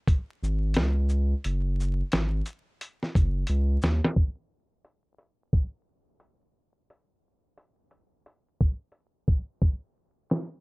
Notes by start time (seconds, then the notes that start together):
0.08 kick, closed hi-hat
0.43 G#1, shaker
0.74 C#2, snare, closed hi-hat
1.09 shaker
1.44 F#1, closed hi-hat
1.80 shaker
2.12 G#1, snare, closed hi-hat
2.46 closed hi-hat, shaker
2.81 closed hi-hat
3.03 snare
3.15 F#1, kick, closed hi-hat, shaker
3.47 C#2, closed hi-hat
3.82 D#2, snare, shaker
4.05 snare
4.16 kick
4.85 closed hi-hat
5.18 closed hi-hat
5.53 kick, closed hi-hat
6.20 closed hi-hat
6.90 closed hi-hat
7.58 closed hi-hat
7.91 closed hi-hat
8.26 closed hi-hat
8.61 kick
8.92 closed hi-hat
9.28 kick
9.62 kick, closed hi-hat
10.30 snare, closed hi-hat